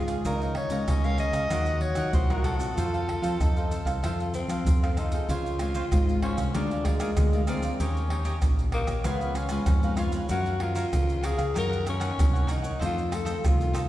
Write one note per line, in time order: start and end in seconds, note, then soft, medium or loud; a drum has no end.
0.00 0.16 C#2 medium
0.00 0.23 G#2 medium
0.00 0.14 G#3 medium
0.00 0.14 C#4 medium
0.00 0.14 F4 medium
0.00 0.23 F4 medium
0.07 0.24 G#4 soft
0.07 0.23 C#5 soft
0.07 0.23 F5 soft
0.07 pandeiro medium
0.07 maracas medium
0.07 surdo soft
0.25 0.65 C#2 loud
0.25 0.85 C#3 soft
0.25 0.55 G#3 medium
0.25 0.55 A#3 medium
0.25 0.85 D#4 medium
0.25 0.55 F4 medium
0.25 0.40 G#4 medium
0.25 0.55 A#4 medium
0.25 0.40 C#5 medium
0.25 0.40 F5 medium
0.25 0.40 A#5 medium
0.25 pandeiro medium
0.25 maracas medium
0.25 surdo medium
0.42 0.55 C#5 soft
0.42 0.55 F5 soft
0.42 0.56 A#5 soft
0.42 pandeiro soft
0.42 maracas soft
0.55 0.91 C#5 medium
0.55 muted cavaquinho stroke soft
0.55 pandeiro medium
0.55 tamborim medium
0.55 surdo soft
0.70 0.85 C#3 medium
0.70 0.98 G#3 medium
0.70 0.98 A#3 medium
0.70 0.98 F4 medium
0.70 1.03 C#5 medium
0.70 1.03 F5 medium
0.70 1.02 A#5 medium
0.70 pandeiro medium
0.70 maracas medium
0.70 surdo soft
0.87 1.28 C#2 medium
0.87 1.48 C#3 medium
0.87 1.48 C#4 medium
0.87 1.06 D#5 medium
0.87 pandeiro medium
0.87 tamborim medium
0.87 maracas medium
0.87 surdo loud
1.04 1.46 G#3 medium
1.04 1.46 A#3 medium
1.04 1.47 F4 medium
1.04 1.18 C#5 soft
1.04 1.19 F5 loud
1.04 1.19 F5 soft
1.04 1.19 A#5 medium
1.04 pandeiro soft
1.04 maracas soft
1.18 1.34 G#4 medium
1.18 1.34 C#5 medium
1.18 1.84 D#5 loud
1.18 1.33 F5 soft
1.18 1.32 A#5 soft
1.18 pandeiro medium
1.18 maracas medium
1.33 1.48 C#2 medium
1.33 1.50 C#5 medium
1.33 1.50 F5 medium
1.33 1.49 A#5 medium
1.33 pandeiro medium
1.33 tamborim medium
1.33 maracas medium
1.33 surdo soft
1.50 1.91 D#2 medium
1.50 2.10 D#3 medium
1.50 1.93 F#3 medium
1.50 1.93 A#3 medium
1.50 1.66 F4 medium
1.50 2.78 F#4 medium
1.50 1.67 A#4 medium
1.50 1.67 D#5 medium
1.50 1.67 F#5 medium
1.50 pandeiro medium
1.50 tamborim medium
1.50 maracas medium
1.50 surdo medium
1.66 1.82 A#4 soft
1.66 1.82 D#5 soft
1.66 1.82 F#5 soft
1.66 pandeiro soft
1.66 maracas soft
1.81 2.14 C#5 medium
1.81 muted cavaquinho stroke soft
1.81 pandeiro medium
1.95 2.11 D#3 medium
1.95 2.24 F#3 medium
1.95 2.24 A#3 medium
1.95 2.25 F4 medium
1.95 2.29 A#4 medium
1.95 2.29 D#5 medium
1.95 2.28 F#5 medium
1.95 pandeiro medium
1.95 tamborim medium
1.95 maracas medium
1.95 surdo soft
2.13 2.68 C2 medium
2.13 2.74 A#2 medium
2.13 2.33 C5 medium
2.13 pandeiro medium
2.13 maracas medium
2.13 surdo loud
2.30 2.56 F#3 medium
2.30 2.57 A#3 medium
2.30 2.57 F4 medium
2.30 2.44 A#4 medium
2.30 2.45 A#4 medium
2.30 2.45 D#5 medium
2.30 2.45 F#5 medium
2.30 pandeiro soft
2.30 tamborim medium
2.30 maracas soft
2.44 2.60 F4 medium
2.44 4.61 A4 medium
2.44 2.60 A#4 medium
2.44 2.59 D#5 medium
2.44 2.59 F#5 medium
2.44 pandeiro medium
2.44 tamborim medium
2.44 maracas medium
2.59 3.18 C4 medium
2.59 3.18 F4 medium
2.59 3.18 A4 medium
2.59 2.76 A#4 soft
2.59 2.76 D#5 soft
2.59 2.75 F#5 soft
2.59 pandeiro medium
2.59 maracas medium
2.59 surdo soft
2.76 3.18 F2 loud
2.76 3.37 F3 soft
2.76 3.42 F4 medium
2.76 2.92 F4 medium
2.76 2.92 A4 medium
2.76 2.92 C5 medium
2.76 2.93 F5 medium
2.76 pandeiro medium
2.76 maracas medium
2.76 surdo medium
2.94 3.07 A4 soft
2.94 3.07 C5 soft
2.94 3.08 F5 soft
2.94 pandeiro soft
2.94 maracas soft
3.08 muted cavaquinho stroke soft
3.08 pandeiro medium
3.08 tamborim medium
3.08 surdo soft
3.21 3.37 F3 medium
3.21 3.49 C4 medium
3.21 3.50 F4 medium
3.21 3.50 A4 medium
3.21 3.55 A4 medium
3.21 3.54 C5 medium
3.21 3.54 F5 medium
3.21 pandeiro medium
3.21 maracas medium
3.21 surdo soft
3.39 3.80 F2 medium
3.39 4.00 C3 medium
3.39 3.76 D#4 medium
3.39 pandeiro medium
3.39 tamborim medium
3.39 maracas medium
3.39 surdo medium
3.57 3.99 C4 medium
3.57 3.99 F4 medium
3.57 3.99 A4 medium
3.57 3.70 A4 soft
3.57 3.71 C5 soft
3.57 3.71 F5 medium
3.57 pandeiro soft
3.57 maracas soft
3.71 3.86 F4 soft
3.71 3.86 A4 soft
3.71 3.85 C5 soft
3.71 3.85 F5 soft
3.71 pandeiro medium
3.71 maracas medium
3.85 3.99 C2 loud
3.85 4.02 A4 medium
3.85 4.01 C5 medium
3.85 4.01 F5 medium
3.85 pandeiro medium
3.85 tamborim medium
3.85 maracas medium
3.85 surdo soft
4.03 4.43 F2 medium
4.03 4.63 F3 medium
4.03 4.46 C4 medium
4.03 4.32 F4 medium
4.03 4.18 F4 medium
4.03 4.46 F4 medium
4.03 4.18 A4 medium
4.03 4.46 A4 medium
4.03 4.18 C5 medium
4.03 4.19 F5 medium
4.03 pandeiro medium
4.03 tamborim medium
4.03 maracas medium
4.03 surdo medium
4.20 4.34 A4 soft
4.20 4.34 C5 soft
4.20 4.34 F5 soft
4.20 pandeiro soft
4.20 maracas soft
4.34 4.99 C4 medium
4.34 muted cavaquinho stroke soft
4.34 pandeiro medium
4.34 maracas medium
4.48 4.62 F3 medium
4.48 4.76 C4 medium
4.48 4.76 F4 medium
4.48 4.76 A4 medium
4.48 4.81 A4 soft
4.48 4.81 C5 medium
4.48 4.80 F5 medium
4.48 pandeiro medium
4.48 tamborim medium
4.48 maracas medium
4.48 surdo soft
4.65 5.19 F2 medium
4.65 5.26 C3 medium
4.65 pandeiro medium
4.65 maracas medium
4.65 surdo loud
4.83 5.09 C4 medium
4.83 5.09 F4 medium
4.83 5.09 A4 medium
4.83 4.97 A4 soft
4.83 4.97 C5 medium
4.83 4.97 F5 medium
4.83 pandeiro soft
4.83 tamborim medium
4.83 maracas soft
4.97 5.31 D#4 medium
4.97 5.12 F4 soft
4.97 5.12 A4 soft
4.97 5.13 C5 soft
4.97 5.12 F5 medium
4.97 pandeiro medium
4.97 tamborim medium
4.97 maracas medium
5.12 5.60 F4 medium
5.12 5.71 G#4 medium
5.12 5.28 A4 soft
5.12 5.28 C5 soft
5.12 5.27 F5 soft
5.12 pandeiro medium
5.12 maracas medium
5.12 surdo soft
5.29 5.82 C#2 loud
5.29 5.89 C#3 medium
5.29 5.59 F4 medium
5.29 6.22 F4 loud
5.29 5.59 C5 medium
5.29 5.60 C#5 medium
5.29 5.60 F5 medium
5.29 pandeiro medium
5.29 maracas medium
5.29 surdo medium
5.46 pandeiro soft
5.46 maracas soft
5.59 5.78 G#3 soft
5.59 5.79 C4 medium
5.59 5.74 F4 soft
5.59 5.79 F4 medium
5.59 5.74 C5 soft
5.59 5.74 C#5 medium
5.59 5.74 F5 medium
5.59 pandeiro medium
5.59 tamborim medium
5.59 maracas medium
5.75 5.84 F4 medium
5.75 5.85 C5 medium
5.75 5.85 C#5 medium
5.75 5.85 F5 medium
5.75 pandeiro medium
5.75 maracas medium
5.91 6.32 G#1 medium
5.91 6.52 G#2 medium
5.91 6.50 G#3 medium
5.91 6.50 C4 medium
5.91 6.50 F4 medium
5.91 pandeiro medium
5.91 tamborim medium
5.91 maracas medium
5.91 surdo loud
6.09 pandeiro soft
6.09 maracas soft
6.22 6.56 C#4 medium
6.22 6.37 F4 medium
6.22 6.37 C5 medium
6.22 6.37 C#5 medium
6.22 6.36 F5 medium
6.22 pandeiro medium
6.22 tamborim medium
6.37 6.51 C2 medium
6.37 6.53 C5 soft
6.37 6.53 C#5 soft
6.37 6.52 F5 medium
6.37 pandeiro medium
6.37 tamborim medium
6.37 maracas medium
6.55 7.08 D2 loud
6.55 7.14 D3 medium
6.55 6.97 G#3 medium
6.55 6.97 A#3 medium
6.55 6.87 D4 loud
6.55 6.97 F4 medium
6.55 6.69 G#4 medium
6.55 6.69 A#4 medium
6.55 6.70 D5 medium
6.55 6.70 F5 medium
6.55 pandeiro medium
6.55 tamborim medium
6.55 maracas medium
6.55 surdo medium
6.71 6.84 A#4 soft
6.71 6.85 D5 soft
6.71 6.85 F5 soft
6.71 pandeiro soft
6.71 maracas soft
6.85 7.48 G#3 medium
6.85 6.98 G#4 soft
6.85 6.99 A#4 medium
6.85 7.00 D5 medium
6.85 6.99 F5 medium
6.85 pandeiro medium
6.85 tamborim medium
6.85 maracas medium
6.85 surdo medium
7.00 7.12 G#3 medium
7.00 7.11 A#3 medium
7.00 7.12 F4 medium
7.00 7.09 G#4 medium
7.00 7.10 A#4 medium
7.00 7.10 D5 medium
7.00 7.10 F5 medium
7.00 pandeiro medium
7.00 tamborim medium
7.00 maracas medium
7.17 7.70 D2 medium
7.17 7.77 D3 medium
7.17 7.27 G#3 medium
7.17 7.27 A#3 medium
7.17 7.27 F4 medium
7.17 pandeiro medium
7.17 tamborim medium
7.17 maracas medium
7.17 surdo loud
7.33 7.44 G#3 medium
7.33 7.44 A#3 medium
7.33 7.45 F4 medium
7.33 7.47 A#4 soft
7.33 7.47 D5 soft
7.33 7.47 F5 soft
7.33 pandeiro soft
7.33 maracas soft
7.47 7.77 G#3 soft
7.47 7.77 A#3 medium
7.47 7.84 C4 medium
7.47 7.77 F4 medium
7.47 7.62 G#4 medium
7.47 7.63 A#4 medium
7.47 7.62 D5 medium
7.47 7.63 F5 medium
7.47 pandeiro medium
7.47 tamborim medium
7.47 maracas medium
7.62 7.79 A#4 soft
7.62 7.78 D5 soft
7.62 7.79 F5 soft
7.62 pandeiro medium
7.62 maracas medium
7.80 8.33 D#2 medium
7.80 8.40 D#3 medium
7.80 8.06 A#3 soft
7.80 8.07 C#4 medium
7.80 8.48 C#4 medium
7.80 8.09 D#4 medium
7.80 8.10 G4 medium
7.80 8.07 G4 medium
7.80 8.10 C#5 medium
7.80 8.10 D#5 medium
7.80 pandeiro medium
7.80 maracas medium
7.80 surdo medium
7.97 pandeiro soft
7.97 maracas soft
8.10 8.37 A#3 soft
8.10 8.37 C#4 medium
8.10 8.23 D#4 soft
8.10 8.24 G4 soft
8.10 8.38 G4 medium
8.10 8.24 C#5 medium
8.10 8.25 D#5 medium
8.10 pandeiro medium
8.10 tamborim medium
8.25 8.35 D#4 medium
8.25 8.35 G4 medium
8.25 8.35 C#5 medium
8.25 8.35 D#5 medium
8.25 pandeiro medium
8.25 maracas medium
8.42 8.83 A#1 medium
8.42 9.03 A#2 medium
8.42 8.84 A#3 medium
8.42 8.84 C#4 medium
8.42 8.84 G4 medium
8.42 pandeiro medium
8.42 tamborim medium
8.42 maracas medium
8.42 surdo medium
8.59 pandeiro soft
8.59 maracas soft
8.72 9.07 A#3 loud
8.72 8.88 D#4 medium
8.72 8.88 G4 medium
8.72 8.87 C#5 medium
8.72 8.86 D#5 medium
8.72 pandeiro medium
8.72 tamborim medium
8.87 9.02 A#1 medium
8.87 9.04 G4 soft
8.87 9.03 C#5 soft
8.87 9.03 D#5 medium
8.87 pandeiro medium
8.87 tamborim medium
8.87 maracas medium
9.04 9.59 C#2 loud
9.04 9.65 C#3 medium
9.04 9.47 G#3 medium
9.04 9.47 B3 medium
9.04 9.38 B3 loud
9.04 9.19 F4 medium
9.04 9.47 F4 medium
9.04 9.20 B4 medium
9.04 9.20 C#5 medium
9.04 9.20 F5 medium
9.04 pandeiro medium
9.04 tamborim medium
9.04 maracas medium
9.04 surdo medium
9.21 9.34 B4 soft
9.21 9.35 C#5 soft
9.21 9.35 F5 medium
9.21 pandeiro soft
9.21 maracas soft
9.35 9.99 C#4 medium
9.35 9.49 F4 medium
9.35 9.49 B4 medium
9.35 9.49 C#5 soft
9.35 9.50 F5 medium
9.35 pandeiro medium
9.35 tamborim medium
9.35 maracas medium
9.49 9.78 G#3 medium
9.49 9.78 B3 medium
9.49 9.60 F4 medium
9.49 9.78 F4 medium
9.49 9.60 B4 medium
9.49 9.60 C#5 medium
9.49 9.61 F5 medium
9.49 pandeiro medium
9.49 tamborim medium
9.49 maracas medium
9.66 10.22 F2 loud
9.66 10.27 G#2 medium
9.66 pandeiro medium
9.66 tamborim medium
9.66 maracas medium
9.66 surdo loud
9.83 9.94 G#3 medium
9.83 9.94 B3 medium
9.83 9.94 F4 medium
9.83 9.97 B4 soft
9.83 9.97 C#5 soft
9.83 9.98 F5 soft
9.83 pandeiro soft
9.83 maracas soft
9.97 10.27 G#3 medium
9.97 10.27 B3 medium
9.97 10.30 F4 medium
9.97 10.13 F4 medium
9.97 10.28 F4 medium
9.97 10.13 B4 medium
9.97 10.12 C#5 medium
9.97 10.11 F5 medium
9.97 pandeiro medium
9.97 tamborim medium
9.97 maracas medium
10.12 10.29 B4 soft
10.12 10.29 C#5 soft
10.12 10.28 F5 soft
10.12 pandeiro medium
10.12 maracas medium
10.29 10.84 F#2 medium
10.29 10.91 F#2 medium
10.29 10.49 F3 medium
10.29 10.50 A#3 medium
10.29 10.50 C#4 medium
10.29 10.60 F#4 medium
10.29 10.64 F#4 loud
10.29 10.60 A#4 medium
10.29 10.61 C#5 medium
10.29 10.61 F5 medium
10.29 pandeiro medium
10.29 maracas medium
10.29 surdo medium
10.46 pandeiro soft
10.46 maracas soft
10.60 10.81 F3 medium
10.60 10.81 A#3 medium
10.60 10.81 C#4 medium
10.60 11.27 F4 loud
10.60 10.74 F#4 soft
10.60 10.75 A#4 soft
10.60 10.75 C#5 medium
10.60 10.75 F5 medium
10.60 pandeiro medium
10.60 tamborim medium
10.75 10.86 F#4 medium
10.75 10.86 A#4 medium
10.75 10.86 C#5 medium
10.75 10.86 F5 medium
10.75 pandeiro medium
10.75 maracas medium
10.93 11.33 C#2 medium
10.93 11.53 C#3 medium
10.93 11.34 F3 medium
10.93 11.34 A#3 medium
10.93 11.34 C#4 medium
10.93 pandeiro medium
10.93 tamborim medium
10.93 maracas medium
10.93 surdo medium
11.09 pandeiro soft
11.09 maracas soft
11.23 11.38 F#4 medium
11.23 11.57 G#4 loud
11.23 11.38 A#4 medium
11.23 11.38 C#5 medium
11.23 11.37 F5 medium
11.23 pandeiro medium
11.23 tamborim medium
11.23 maracas medium
11.38 11.53 C#2 medium
11.38 11.54 A#4 soft
11.38 11.54 C#5 soft
11.38 11.54 F5 medium
11.38 pandeiro medium
11.38 tamborim medium
11.38 maracas medium
11.54 12.10 F#2 loud
11.54 12.16 F#2 medium
11.54 11.86 D#3 medium
11.54 11.86 A#3 medium
11.54 11.87 C#4 medium
11.54 11.70 D#4 medium
11.54 11.70 A#4 medium
11.54 11.86 A#4 loud
11.54 11.70 C#5 medium
11.54 11.69 F#5 medium
11.54 pandeiro medium
11.54 tamborim medium
11.54 maracas medium
11.54 surdo medium
11.70 11.84 A#4 soft
11.70 11.84 C#5 soft
11.70 11.85 F#5 soft
11.70 pandeiro soft
11.70 maracas soft
11.85 11.98 D#4 soft
11.85 11.98 A#4 medium
11.85 11.99 C#5 medium
11.85 11.99 F#5 medium
11.85 pandeiro medium
11.85 tamborim medium
11.85 maracas medium
11.89 12.53 C#4 loud
11.99 12.29 D#3 medium
11.99 12.29 A#3 medium
11.99 12.29 C#4 medium
11.99 12.10 D#4 medium
11.99 12.10 A#4 medium
11.99 12.11 C#5 medium
11.99 12.11 F#5 medium
11.99 pandeiro medium
11.99 tamborim medium
11.99 maracas medium
12.18 12.72 C2 medium
12.18 12.79 F#2 medium
12.18 pandeiro medium
12.18 tamborim medium
12.18 maracas medium
12.18 surdo loud
12.33 12.45 D#3 medium
12.33 12.46 A#3 medium
12.33 12.46 C#4 medium
12.33 12.46 A#4 soft
12.33 12.47 C#5 soft
12.33 12.47 F#5 soft
12.33 pandeiro soft
12.33 maracas soft
12.47 12.79 D#3 medium
12.47 12.79 A#3 medium
12.47 12.79 C#4 medium
12.47 12.63 D#4 medium
12.47 12.63 A#4 medium
12.47 12.62 C#5 medium
12.47 12.61 F#5 medium
12.47 pandeiro medium
12.47 tamborim medium
12.47 maracas medium
12.51 12.82 D#4 medium
12.62 12.80 A#4 soft
12.62 12.79 C#5 soft
12.62 12.79 F#5 soft
12.62 pandeiro medium
12.62 maracas medium
12.79 13.35 F2 loud
12.79 13.41 F2 medium
12.79 13.00 D#3 medium
12.79 13.01 A3 medium
12.79 13.00 C4 medium
12.79 13.10 F4 medium
12.79 13.10 A4 medium
12.79 13.11 C5 medium
12.79 13.11 D#5 medium
12.79 pandeiro medium
12.79 maracas medium
12.79 surdo medium
12.85 13.16 F4 loud
12.98 pandeiro soft
12.98 maracas soft
13.11 13.39 D#3 soft
13.11 13.40 A3 medium
13.11 13.40 C4 medium
13.11 13.24 F4 soft
13.11 13.24 A4 soft
13.11 13.48 A4 loud
13.11 13.25 C5 medium
13.11 13.25 D#5 medium
13.11 pandeiro medium
13.11 tamborim medium
13.11 maracas medium
13.25 13.36 F4 medium
13.25 13.36 A4 medium
13.25 13.36 C5 medium
13.25 13.36 D#5 medium
13.25 pandeiro medium
13.25 maracas medium
13.44 13.85 C2 medium
13.44 13.89 C3 medium
13.44 13.85 D#3 medium
13.44 13.86 A3 medium
13.44 13.86 C4 medium
13.44 13.82 F4 medium
13.44 pandeiro medium
13.44 tamborim medium
13.44 maracas medium
13.44 surdo medium
13.61 pandeiro soft
13.61 maracas soft
13.73 13.89 F4 medium
13.73 13.89 A4 medium
13.73 13.88 C5 medium
13.73 13.87 D#5 medium
13.73 pandeiro medium
13.73 tamborim medium
13.73 maracas medium